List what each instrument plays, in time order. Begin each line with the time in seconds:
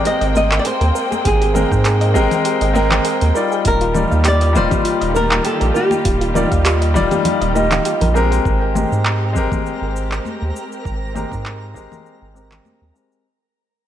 Already playing: grand piano G#3 C4 G4 A#4, string section A#3 C4 G5
0.05 synth arpeggio sound G4, nylon-string guitar D#5, open hi-hat, shaker
0.21 analog synth bass G#1, synth arpeggio sound D#5, open hi-hat
0.35 synth arpeggio sound A#4, nylon-string guitar D#5, high conga, shaker
0.51 synth arpeggio sound G5, clap, shaker
0.59 nylon-string guitar D5
0.65 synth arpeggio sound G#4, nylon-string guitar C5, open hi-hat, shaker
0.81 analog synth bass D#2, synth arpeggio sound A#4, open hi-hat
0.95 synth arpeggio sound A#4, shaker
1.11 synth arpeggio sound G#4, muted conga, shaker
1.25 analog synth bass G#1, synth arpeggio sound G4, nylon-string guitar G#4, kick, open hi-hat, shaker
1.41 synth arpeggio sound G4, open hi-hat
1.54 grand piano G#3 C4 A#4 G5, synth arpeggio sound A#4, high conga, low conga, shaker
1.72 analog synth bass G#2, synth arpeggio sound G5, kick, shaker
1.85 synth arpeggio sound G#4, clap, open hi-hat, shaker
2.01 synth arpeggio sound D#5, open hi-hat
2.14 analog synth bass G#1, grand piano G#3 C4 A#4 G5, synth arpeggio sound G4, muted conga, shaker
2.31 synth arpeggio sound G#4, open hi-hat, low conga, shaker
2.45 synth arpeggio sound G4, open hi-hat, shaker
2.61 analog synth bass G#1, synth arpeggio sound D#5, open hi-hat
2.73 grand piano G#3 C4 A#4 G5, synth arpeggio sound A#4, muted conga, high conga, shaker
2.91 synth arpeggio sound G5, clap, low conga, shaker
3.05 synth arpeggio sound G#4, open hi-hat, shaker
3.21 analog synth bass D#2, synth arpeggio sound A#4, open hi-hat
3.34 grand piano G3 D#4 F4 D5, synth arpeggio sound A#4, shaker
3.52 synth arpeggio sound G#4, shaker
3.64 analog synth bass D#1, string section D#3 A#3 F4 G4, synth arpeggio sound F4, nylon-string guitar A#4, kick, open hi-hat, shaker
3.81 synth arpeggio sound F4, open hi-hat
3.94 grand piano G3 D#4 F4 D5, synth arpeggio sound A#4, high conga, low conga, shaker
4.11 analog synth bass D#2, synth arpeggio sound F5, shaker
4.25 synth arpeggio sound G4, nylon-string guitar D5, clap, open hi-hat, shaker
4.41 synth arpeggio sound D#5, open hi-hat
4.53 analog synth bass D#1, grand piano G3 D#4 F4, synth arpeggio sound F4, nylon-string guitar C5, muted conga, low conga, shaker
4.57 grand piano D5
4.71 synth arpeggio sound G4, kick, open hi-hat, low conga, shaker
4.84 synth arpeggio sound F4, open hi-hat, shaker
5.01 analog synth bass D#1, synth arpeggio sound D#5, open hi-hat
5.14 synth arpeggio sound A#4, nylon-string guitar A#4, high conga, shaker
5.31 synth arpeggio sound F5, clap, shaker
5.45 synth arpeggio sound G4, nylon-string guitar A4, open hi-hat, shaker
5.61 analog synth bass A#1, synth arpeggio sound A#4, open hi-hat
5.74 nylon-string guitar G4, synth arpeggio sound A#4, shaker
5.91 synth arpeggio sound G4, muted conga, shaker
6.05 analog synth bass D#1, synth arpeggio sound F4, kick, open hi-hat, shaker
6.21 synth arpeggio sound F4, open hi-hat
6.34 grand piano G3 D#4 F4 D5, synth arpeggio sound A#4, high conga, low conga, shaker
6.51 analog synth bass D#2, synth arpeggio sound F5, kick, open hi-hat, shaker
6.65 synth arpeggio sound G4, clap, open hi-hat, shaker
6.81 synth arpeggio sound D#5, open hi-hat
6.94 analog synth bass D#1, grand piano G3 D#4 F4 D5, synth arpeggio sound F4, kick, muted conga, low conga, shaker
7.11 synth arpeggio sound G4, open hi-hat, high conga, low conga, shaker
7.25 synth arpeggio sound F4, open hi-hat, low conga, shaker
7.41 analog synth bass D#1, synth arpeggio sound D#5, open hi-hat
7.54 grand piano G3 D#4 F4 D#5, synth arpeggio sound A#4, muted conga, high conga, shaker
7.71 synth arpeggio sound F5, clap, open hi-hat, low conga, shaker
7.85 synth arpeggio sound G4, open hi-hat, shaker
8.01 analog synth bass A#1, synth arpeggio sound A#4, open hi-hat, low conga
8.14 grand piano G#3 C4 G4 A#4, synth arpeggio sound A#4, shaker
8.32 synth arpeggio sound G4, open hi-hat, shaker
8.45 analog synth bass G#1, string section G#3 C4 G4, synth texture A#4 A#5, kick, shaker
8.74 grand piano G#3 C4 G4 A#4, high conga, low conga, shaker
8.92 analog synth bass G#2, shaker
9.05 clap, shaker
9.33 analog synth bass G#1, grand piano G#3 C4 G4, low conga, shaker
9.38 grand piano A#4
9.52 kick, high conga, low conga, shaker
9.66 shaker
9.82 analog synth bass G#1
9.96 shaker
10.11 clap, shaker
10.25 high conga, shaker
10.42 analog synth bass D#2
10.56 shaker
10.72 shaker
10.85 analog synth bass G#1, kick, shaker
11.14 grand piano G#3 C4 G4 A#4, high conga, low conga, shaker
11.32 analog synth bass G#2, kick, shaker
11.46 clap, shaker
11.74 analog synth bass G#1, grand piano G#3 C4 G4 A#4, kick, shaker
11.92 high conga, low conga, shaker
12.06 shaker
12.22 analog synth bass G#1
12.34 grand piano G#3 C4 G4 A#4, shaker
12.51 clap, low conga, shaker
12.65 high conga, shaker
12.82 analog synth bass D#2
12.94 grand piano G#3 C4 G4 A#4, shaker
13.12 shaker